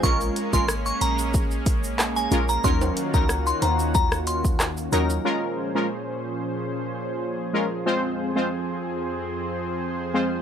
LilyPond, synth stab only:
\new Staff \with { instrumentName = "Synth stab" } { \time 4/4 \key bes \minor \tempo 4 = 92 <aes des' f' bes'>8. <aes des' f' bes'>16 r2 r8 <aes des' f' bes'>16 r16 | <ges des' ees' bes'>8. <ges des' ees' bes'>16 r2 r8 <ges des' ees' bes'>8 | <aes des' f' bes'>8. <aes des' f' bes'>16 r2 r8 <aes des' f' bes'>16 r16 | <aes c' f' c''>8. <aes c' f' c''>16 r2 r8 <aes c' f' c''>8 | }